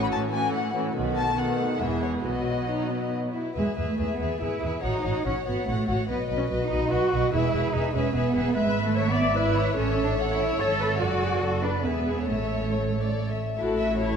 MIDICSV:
0, 0, Header, 1, 6, 480
1, 0, Start_track
1, 0, Key_signature, 4, "major"
1, 0, Tempo, 419287
1, 1098, Time_signature, 3, 2, 24, 8
1, 2064, Tempo, 435414
1, 4944, Tempo, 416956
1, 8304, Tempo, 408163
1, 9744, Key_signature, 3, "major"
1, 13104, Tempo, 429185
1, 16180, End_track
2, 0, Start_track
2, 0, Title_t, "Violin section"
2, 0, Program_c, 0, 48
2, 32, Note_on_c, 0, 83, 56
2, 78, Note_off_c, 0, 83, 0
2, 139, Note_on_c, 0, 81, 60
2, 231, Note_off_c, 0, 81, 0
2, 377, Note_on_c, 0, 80, 65
2, 611, Note_off_c, 0, 80, 0
2, 617, Note_on_c, 0, 78, 56
2, 851, Note_off_c, 0, 78, 0
2, 1335, Note_on_c, 0, 81, 66
2, 1561, Note_off_c, 0, 81, 0
2, 1581, Note_on_c, 0, 78, 55
2, 2059, Note_on_c, 0, 76, 55
2, 2064, Note_off_c, 0, 78, 0
2, 2302, Note_off_c, 0, 76, 0
2, 2303, Note_on_c, 0, 73, 44
2, 2391, Note_off_c, 0, 73, 0
2, 2548, Note_on_c, 0, 75, 45
2, 3504, Note_off_c, 0, 75, 0
2, 3997, Note_on_c, 0, 76, 37
2, 4234, Note_off_c, 0, 76, 0
2, 4247, Note_on_c, 0, 76, 34
2, 4470, Note_off_c, 0, 76, 0
2, 4483, Note_on_c, 0, 76, 31
2, 4701, Note_off_c, 0, 76, 0
2, 4714, Note_on_c, 0, 76, 33
2, 4927, Note_off_c, 0, 76, 0
2, 4940, Note_on_c, 0, 76, 31
2, 5168, Note_off_c, 0, 76, 0
2, 5182, Note_on_c, 0, 76, 33
2, 5419, Note_off_c, 0, 76, 0
2, 5422, Note_on_c, 0, 78, 36
2, 5657, Note_off_c, 0, 78, 0
2, 5671, Note_on_c, 0, 78, 35
2, 5898, Note_off_c, 0, 78, 0
2, 5911, Note_on_c, 0, 78, 38
2, 6137, Note_off_c, 0, 78, 0
2, 6150, Note_on_c, 0, 78, 41
2, 6381, Note_off_c, 0, 78, 0
2, 6395, Note_on_c, 0, 78, 41
2, 6620, Note_off_c, 0, 78, 0
2, 6634, Note_on_c, 0, 78, 41
2, 6870, Note_off_c, 0, 78, 0
2, 6874, Note_on_c, 0, 75, 42
2, 7093, Note_off_c, 0, 75, 0
2, 7107, Note_on_c, 0, 75, 41
2, 7332, Note_off_c, 0, 75, 0
2, 7346, Note_on_c, 0, 75, 41
2, 7565, Note_off_c, 0, 75, 0
2, 7579, Note_on_c, 0, 75, 46
2, 7811, Note_off_c, 0, 75, 0
2, 7824, Note_on_c, 0, 75, 41
2, 8052, Note_off_c, 0, 75, 0
2, 8066, Note_on_c, 0, 75, 43
2, 8299, Note_off_c, 0, 75, 0
2, 8306, Note_on_c, 0, 76, 51
2, 8523, Note_off_c, 0, 76, 0
2, 8537, Note_on_c, 0, 76, 43
2, 8771, Note_off_c, 0, 76, 0
2, 8785, Note_on_c, 0, 76, 41
2, 9012, Note_off_c, 0, 76, 0
2, 9026, Note_on_c, 0, 76, 49
2, 9251, Note_off_c, 0, 76, 0
2, 9265, Note_on_c, 0, 76, 43
2, 9490, Note_off_c, 0, 76, 0
2, 9504, Note_on_c, 0, 76, 46
2, 9726, Note_off_c, 0, 76, 0
2, 9740, Note_on_c, 0, 76, 49
2, 10181, Note_off_c, 0, 76, 0
2, 10210, Note_on_c, 0, 76, 51
2, 11153, Note_off_c, 0, 76, 0
2, 11182, Note_on_c, 0, 76, 52
2, 11651, Note_off_c, 0, 76, 0
2, 11671, Note_on_c, 0, 78, 50
2, 11897, Note_on_c, 0, 76, 51
2, 11903, Note_off_c, 0, 78, 0
2, 12129, Note_off_c, 0, 76, 0
2, 12143, Note_on_c, 0, 76, 46
2, 12613, Note_off_c, 0, 76, 0
2, 12632, Note_on_c, 0, 74, 42
2, 13096, Note_off_c, 0, 74, 0
2, 13110, Note_on_c, 0, 74, 40
2, 13568, Note_off_c, 0, 74, 0
2, 13578, Note_on_c, 0, 76, 38
2, 14048, Note_off_c, 0, 76, 0
2, 14061, Note_on_c, 0, 76, 36
2, 14493, Note_off_c, 0, 76, 0
2, 14547, Note_on_c, 0, 73, 37
2, 14637, Note_off_c, 0, 73, 0
2, 14872, Note_on_c, 0, 74, 42
2, 15190, Note_off_c, 0, 74, 0
2, 15199, Note_on_c, 0, 76, 40
2, 15522, Note_off_c, 0, 76, 0
2, 15753, Note_on_c, 0, 76, 61
2, 15973, Note_off_c, 0, 76, 0
2, 15986, Note_on_c, 0, 73, 55
2, 16180, Note_off_c, 0, 73, 0
2, 16180, End_track
3, 0, Start_track
3, 0, Title_t, "Violin section"
3, 0, Program_c, 1, 48
3, 0, Note_on_c, 1, 61, 41
3, 0, Note_on_c, 1, 66, 41
3, 368, Note_off_c, 1, 61, 0
3, 368, Note_off_c, 1, 66, 0
3, 386, Note_on_c, 1, 61, 39
3, 388, Note_on_c, 1, 66, 39
3, 837, Note_off_c, 1, 61, 0
3, 839, Note_off_c, 1, 66, 0
3, 850, Note_on_c, 1, 61, 37
3, 852, Note_on_c, 1, 66, 37
3, 1076, Note_off_c, 1, 66, 0
3, 1086, Note_on_c, 1, 59, 47
3, 1090, Note_off_c, 1, 61, 0
3, 1090, Note_on_c, 1, 66, 45
3, 1541, Note_off_c, 1, 59, 0
3, 1543, Note_off_c, 1, 66, 0
3, 1578, Note_on_c, 1, 59, 39
3, 1580, Note_on_c, 1, 66, 38
3, 2046, Note_off_c, 1, 59, 0
3, 2054, Note_off_c, 1, 66, 0
3, 2060, Note_on_c, 1, 59, 39
3, 2060, Note_on_c, 1, 68, 35
3, 2538, Note_off_c, 1, 59, 0
3, 2538, Note_off_c, 1, 68, 0
3, 2551, Note_on_c, 1, 59, 35
3, 2552, Note_on_c, 1, 66, 38
3, 2983, Note_off_c, 1, 59, 0
3, 2992, Note_off_c, 1, 66, 0
3, 3048, Note_on_c, 1, 63, 46
3, 3270, Note_off_c, 1, 63, 0
3, 3283, Note_on_c, 1, 59, 40
3, 3764, Note_on_c, 1, 64, 41
3, 3766, Note_off_c, 1, 59, 0
3, 4005, Note_on_c, 1, 71, 37
3, 4006, Note_off_c, 1, 64, 0
3, 4228, Note_off_c, 1, 71, 0
3, 4241, Note_on_c, 1, 71, 34
3, 4469, Note_off_c, 1, 71, 0
3, 4483, Note_on_c, 1, 71, 33
3, 4694, Note_off_c, 1, 71, 0
3, 4707, Note_on_c, 1, 71, 31
3, 4929, Note_off_c, 1, 71, 0
3, 4942, Note_on_c, 1, 71, 33
3, 5168, Note_off_c, 1, 71, 0
3, 5181, Note_on_c, 1, 71, 35
3, 5415, Note_on_c, 1, 73, 39
3, 5419, Note_off_c, 1, 71, 0
3, 5658, Note_off_c, 1, 73, 0
3, 5670, Note_on_c, 1, 73, 36
3, 5895, Note_off_c, 1, 73, 0
3, 5909, Note_on_c, 1, 73, 36
3, 6134, Note_off_c, 1, 73, 0
3, 6148, Note_on_c, 1, 73, 32
3, 6376, Note_off_c, 1, 73, 0
3, 6389, Note_on_c, 1, 73, 37
3, 6607, Note_off_c, 1, 73, 0
3, 6621, Note_on_c, 1, 73, 37
3, 6863, Note_off_c, 1, 73, 0
3, 6868, Note_on_c, 1, 71, 44
3, 7088, Note_off_c, 1, 71, 0
3, 7102, Note_on_c, 1, 71, 41
3, 7331, Note_off_c, 1, 71, 0
3, 7345, Note_on_c, 1, 71, 41
3, 7567, Note_off_c, 1, 71, 0
3, 7581, Note_on_c, 1, 71, 38
3, 7803, Note_off_c, 1, 71, 0
3, 7817, Note_on_c, 1, 71, 45
3, 8044, Note_off_c, 1, 71, 0
3, 8058, Note_on_c, 1, 71, 41
3, 8287, Note_off_c, 1, 71, 0
3, 8301, Note_on_c, 1, 71, 53
3, 8527, Note_off_c, 1, 71, 0
3, 8541, Note_on_c, 1, 71, 48
3, 8762, Note_off_c, 1, 71, 0
3, 8776, Note_on_c, 1, 71, 45
3, 9010, Note_off_c, 1, 71, 0
3, 9024, Note_on_c, 1, 71, 45
3, 9251, Note_off_c, 1, 71, 0
3, 9265, Note_on_c, 1, 71, 45
3, 9493, Note_off_c, 1, 71, 0
3, 9507, Note_on_c, 1, 71, 50
3, 9740, Note_off_c, 1, 71, 0
3, 9745, Note_on_c, 1, 76, 52
3, 10183, Note_off_c, 1, 76, 0
3, 10209, Note_on_c, 1, 76, 45
3, 10681, Note_off_c, 1, 76, 0
3, 10694, Note_on_c, 1, 74, 48
3, 10929, Note_on_c, 1, 73, 56
3, 10934, Note_off_c, 1, 74, 0
3, 11157, Note_off_c, 1, 73, 0
3, 11171, Note_on_c, 1, 73, 58
3, 12587, Note_off_c, 1, 73, 0
3, 12610, Note_on_c, 1, 74, 50
3, 13098, Note_on_c, 1, 69, 42
3, 13101, Note_off_c, 1, 74, 0
3, 13570, Note_on_c, 1, 71, 37
3, 13572, Note_off_c, 1, 69, 0
3, 14057, Note_on_c, 1, 73, 40
3, 14059, Note_off_c, 1, 71, 0
3, 15264, Note_off_c, 1, 73, 0
3, 15518, Note_on_c, 1, 69, 45
3, 15522, Note_on_c, 1, 64, 45
3, 15957, Note_off_c, 1, 69, 0
3, 15959, Note_off_c, 1, 64, 0
3, 15989, Note_on_c, 1, 64, 41
3, 15989, Note_on_c, 1, 69, 45
3, 16180, Note_off_c, 1, 64, 0
3, 16180, Note_off_c, 1, 69, 0
3, 16180, End_track
4, 0, Start_track
4, 0, Title_t, "Viola section"
4, 0, Program_c, 2, 48
4, 0, Note_on_c, 2, 52, 39
4, 0, Note_on_c, 2, 57, 36
4, 363, Note_off_c, 2, 52, 0
4, 365, Note_off_c, 2, 57, 0
4, 377, Note_on_c, 2, 52, 38
4, 379, Note_on_c, 2, 57, 40
4, 845, Note_off_c, 2, 52, 0
4, 846, Note_off_c, 2, 57, 0
4, 859, Note_on_c, 2, 57, 39
4, 861, Note_on_c, 2, 52, 39
4, 1087, Note_off_c, 2, 57, 0
4, 1095, Note_off_c, 2, 52, 0
4, 1101, Note_on_c, 2, 57, 40
4, 1102, Note_on_c, 2, 51, 39
4, 1549, Note_off_c, 2, 51, 0
4, 1549, Note_off_c, 2, 57, 0
4, 1585, Note_on_c, 2, 51, 41
4, 1586, Note_on_c, 2, 57, 42
4, 2057, Note_off_c, 2, 51, 0
4, 2058, Note_off_c, 2, 57, 0
4, 2072, Note_on_c, 2, 56, 40
4, 2073, Note_on_c, 2, 52, 37
4, 2550, Note_on_c, 2, 59, 36
4, 2551, Note_on_c, 2, 54, 36
4, 2553, Note_off_c, 2, 56, 0
4, 2554, Note_off_c, 2, 52, 0
4, 3777, Note_off_c, 2, 59, 0
4, 3778, Note_off_c, 2, 54, 0
4, 4012, Note_on_c, 2, 68, 33
4, 4231, Note_off_c, 2, 68, 0
4, 4245, Note_on_c, 2, 68, 30
4, 4465, Note_off_c, 2, 68, 0
4, 4478, Note_on_c, 2, 68, 33
4, 4697, Note_off_c, 2, 68, 0
4, 4710, Note_on_c, 2, 68, 33
4, 4929, Note_off_c, 2, 68, 0
4, 4942, Note_on_c, 2, 68, 35
4, 5166, Note_off_c, 2, 68, 0
4, 5180, Note_on_c, 2, 68, 34
4, 5418, Note_off_c, 2, 68, 0
4, 5426, Note_on_c, 2, 66, 37
4, 5650, Note_off_c, 2, 66, 0
4, 5664, Note_on_c, 2, 66, 38
4, 5898, Note_off_c, 2, 66, 0
4, 5911, Note_on_c, 2, 66, 34
4, 6133, Note_off_c, 2, 66, 0
4, 6147, Note_on_c, 2, 66, 36
4, 6374, Note_off_c, 2, 66, 0
4, 6388, Note_on_c, 2, 66, 41
4, 6619, Note_off_c, 2, 66, 0
4, 6632, Note_on_c, 2, 66, 39
4, 6858, Note_off_c, 2, 66, 0
4, 6871, Note_on_c, 2, 66, 38
4, 7107, Note_off_c, 2, 66, 0
4, 7119, Note_on_c, 2, 66, 38
4, 7334, Note_off_c, 2, 66, 0
4, 7348, Note_on_c, 2, 66, 44
4, 7570, Note_off_c, 2, 66, 0
4, 7584, Note_on_c, 2, 66, 43
4, 7812, Note_off_c, 2, 66, 0
4, 7826, Note_on_c, 2, 66, 46
4, 8053, Note_off_c, 2, 66, 0
4, 8067, Note_on_c, 2, 66, 43
4, 8299, Note_off_c, 2, 66, 0
4, 8300, Note_on_c, 2, 68, 46
4, 8537, Note_off_c, 2, 68, 0
4, 8549, Note_on_c, 2, 68, 42
4, 8771, Note_off_c, 2, 68, 0
4, 8785, Note_on_c, 2, 68, 45
4, 9010, Note_off_c, 2, 68, 0
4, 9024, Note_on_c, 2, 68, 48
4, 9253, Note_off_c, 2, 68, 0
4, 9267, Note_on_c, 2, 68, 46
4, 9493, Note_off_c, 2, 68, 0
4, 9507, Note_on_c, 2, 68, 47
4, 9740, Note_off_c, 2, 68, 0
4, 9747, Note_on_c, 2, 71, 46
4, 10184, Note_off_c, 2, 71, 0
4, 10214, Note_on_c, 2, 73, 50
4, 10450, Note_on_c, 2, 74, 55
4, 10454, Note_off_c, 2, 73, 0
4, 10691, Note_on_c, 2, 71, 50
4, 10693, Note_off_c, 2, 74, 0
4, 11173, Note_on_c, 2, 69, 46
4, 11174, Note_off_c, 2, 71, 0
4, 11641, Note_off_c, 2, 69, 0
4, 11655, Note_on_c, 2, 69, 46
4, 12124, Note_off_c, 2, 69, 0
4, 12134, Note_on_c, 2, 73, 49
4, 12229, Note_off_c, 2, 73, 0
4, 12377, Note_on_c, 2, 71, 49
4, 12471, Note_off_c, 2, 71, 0
4, 12616, Note_on_c, 2, 69, 47
4, 12856, Note_off_c, 2, 69, 0
4, 12863, Note_on_c, 2, 68, 45
4, 13100, Note_on_c, 2, 69, 43
4, 13105, Note_off_c, 2, 68, 0
4, 13334, Note_on_c, 2, 71, 45
4, 13335, Note_off_c, 2, 69, 0
4, 13573, Note_off_c, 2, 71, 0
4, 13578, Note_on_c, 2, 68, 39
4, 13807, Note_off_c, 2, 68, 0
4, 13820, Note_on_c, 2, 68, 45
4, 14059, Note_off_c, 2, 68, 0
4, 14061, Note_on_c, 2, 69, 36
4, 15266, Note_off_c, 2, 69, 0
4, 15525, Note_on_c, 2, 66, 49
4, 15961, Note_off_c, 2, 66, 0
4, 15994, Note_on_c, 2, 64, 41
4, 16180, Note_off_c, 2, 64, 0
4, 16180, End_track
5, 0, Start_track
5, 0, Title_t, "Cello section"
5, 0, Program_c, 3, 48
5, 145, Note_on_c, 3, 45, 48
5, 562, Note_off_c, 3, 45, 0
5, 620, Note_on_c, 3, 45, 47
5, 1042, Note_off_c, 3, 45, 0
5, 1103, Note_on_c, 3, 47, 48
5, 2021, Note_off_c, 3, 47, 0
5, 2072, Note_on_c, 3, 40, 42
5, 2553, Note_off_c, 3, 40, 0
5, 2555, Note_on_c, 3, 47, 37
5, 3755, Note_off_c, 3, 47, 0
5, 4007, Note_on_c, 3, 56, 50
5, 4095, Note_off_c, 3, 56, 0
5, 4321, Note_on_c, 3, 57, 46
5, 4627, Note_off_c, 3, 57, 0
5, 4634, Note_on_c, 3, 59, 44
5, 4943, Note_off_c, 3, 59, 0
5, 4945, Note_on_c, 3, 64, 56
5, 5415, Note_off_c, 3, 64, 0
5, 5420, Note_on_c, 3, 63, 57
5, 5899, Note_off_c, 3, 63, 0
5, 5909, Note_on_c, 3, 61, 55
5, 6001, Note_off_c, 3, 61, 0
5, 6151, Note_on_c, 3, 59, 50
5, 6388, Note_off_c, 3, 59, 0
5, 6392, Note_on_c, 3, 57, 55
5, 6873, Note_on_c, 3, 59, 53
5, 6875, Note_off_c, 3, 57, 0
5, 6965, Note_off_c, 3, 59, 0
5, 7189, Note_on_c, 3, 61, 59
5, 7281, Note_off_c, 3, 61, 0
5, 7510, Note_on_c, 3, 63, 59
5, 7821, Note_off_c, 3, 63, 0
5, 7825, Note_on_c, 3, 66, 65
5, 8303, Note_off_c, 3, 66, 0
5, 8303, Note_on_c, 3, 64, 68
5, 8774, Note_off_c, 3, 64, 0
5, 8786, Note_on_c, 3, 63, 65
5, 9026, Note_off_c, 3, 63, 0
5, 9028, Note_on_c, 3, 61, 60
5, 9263, Note_off_c, 3, 61, 0
5, 9270, Note_on_c, 3, 59, 63
5, 9737, Note_off_c, 3, 59, 0
5, 9752, Note_on_c, 3, 56, 69
5, 10061, Note_on_c, 3, 57, 68
5, 10062, Note_off_c, 3, 56, 0
5, 10370, Note_off_c, 3, 57, 0
5, 10377, Note_on_c, 3, 59, 62
5, 10692, Note_on_c, 3, 64, 72
5, 10696, Note_off_c, 3, 59, 0
5, 11164, Note_off_c, 3, 64, 0
5, 11174, Note_on_c, 3, 61, 65
5, 11489, Note_on_c, 3, 62, 65
5, 11490, Note_off_c, 3, 61, 0
5, 11584, Note_off_c, 3, 62, 0
5, 11814, Note_on_c, 3, 64, 63
5, 12127, Note_off_c, 3, 64, 0
5, 12128, Note_on_c, 3, 69, 72
5, 12615, Note_off_c, 3, 69, 0
5, 12615, Note_on_c, 3, 66, 71
5, 13322, Note_off_c, 3, 66, 0
5, 13334, Note_on_c, 3, 62, 58
5, 13572, Note_on_c, 3, 59, 50
5, 13574, Note_off_c, 3, 62, 0
5, 14057, Note_on_c, 3, 57, 44
5, 14060, Note_off_c, 3, 59, 0
5, 15277, Note_off_c, 3, 57, 0
5, 15519, Note_on_c, 3, 45, 47
5, 16180, Note_off_c, 3, 45, 0
5, 16180, End_track
6, 0, Start_track
6, 0, Title_t, "Double bass section"
6, 0, Program_c, 4, 48
6, 1102, Note_on_c, 4, 35, 40
6, 1549, Note_off_c, 4, 35, 0
6, 2069, Note_on_c, 4, 28, 39
6, 2518, Note_off_c, 4, 28, 0
6, 2553, Note_on_c, 4, 35, 35
6, 3007, Note_off_c, 4, 35, 0
6, 4001, Note_on_c, 4, 40, 38
6, 4089, Note_off_c, 4, 40, 0
6, 4239, Note_on_c, 4, 40, 38
6, 4327, Note_off_c, 4, 40, 0
6, 4474, Note_on_c, 4, 40, 37
6, 4562, Note_off_c, 4, 40, 0
6, 4705, Note_on_c, 4, 40, 34
6, 4793, Note_off_c, 4, 40, 0
6, 4941, Note_on_c, 4, 40, 41
6, 5033, Note_off_c, 4, 40, 0
6, 5181, Note_on_c, 4, 40, 41
6, 5273, Note_off_c, 4, 40, 0
6, 5425, Note_on_c, 4, 33, 41
6, 5517, Note_off_c, 4, 33, 0
6, 5672, Note_on_c, 4, 33, 43
6, 5764, Note_off_c, 4, 33, 0
6, 5917, Note_on_c, 4, 33, 44
6, 6009, Note_off_c, 4, 33, 0
6, 6156, Note_on_c, 4, 33, 41
6, 6248, Note_off_c, 4, 33, 0
6, 6397, Note_on_c, 4, 33, 46
6, 6489, Note_off_c, 4, 33, 0
6, 6636, Note_on_c, 4, 33, 41
6, 6728, Note_off_c, 4, 33, 0
6, 6875, Note_on_c, 4, 35, 43
6, 6967, Note_off_c, 4, 35, 0
6, 7112, Note_on_c, 4, 35, 50
6, 7204, Note_off_c, 4, 35, 0
6, 7350, Note_on_c, 4, 35, 46
6, 7442, Note_off_c, 4, 35, 0
6, 7589, Note_on_c, 4, 35, 47
6, 7681, Note_off_c, 4, 35, 0
6, 7825, Note_on_c, 4, 35, 53
6, 7917, Note_off_c, 4, 35, 0
6, 8069, Note_on_c, 4, 35, 52
6, 8161, Note_off_c, 4, 35, 0
6, 8304, Note_on_c, 4, 28, 53
6, 8398, Note_off_c, 4, 28, 0
6, 8547, Note_on_c, 4, 28, 49
6, 8641, Note_off_c, 4, 28, 0
6, 8787, Note_on_c, 4, 28, 48
6, 8881, Note_off_c, 4, 28, 0
6, 9027, Note_on_c, 4, 28, 52
6, 9121, Note_off_c, 4, 28, 0
6, 9260, Note_on_c, 4, 28, 54
6, 9354, Note_off_c, 4, 28, 0
6, 9506, Note_on_c, 4, 28, 50
6, 9600, Note_off_c, 4, 28, 0
6, 9747, Note_on_c, 4, 32, 54
6, 11130, Note_off_c, 4, 32, 0
6, 11172, Note_on_c, 4, 33, 48
6, 12113, Note_off_c, 4, 33, 0
6, 12130, Note_on_c, 4, 32, 47
6, 12607, Note_off_c, 4, 32, 0
6, 12614, Note_on_c, 4, 30, 43
6, 13091, Note_off_c, 4, 30, 0
6, 13105, Note_on_c, 4, 30, 45
6, 13566, Note_off_c, 4, 30, 0
6, 13574, Note_on_c, 4, 28, 40
6, 14061, Note_off_c, 4, 28, 0
6, 14064, Note_on_c, 4, 33, 38
6, 15292, Note_off_c, 4, 33, 0
6, 15525, Note_on_c, 4, 33, 45
6, 16180, Note_off_c, 4, 33, 0
6, 16180, End_track
0, 0, End_of_file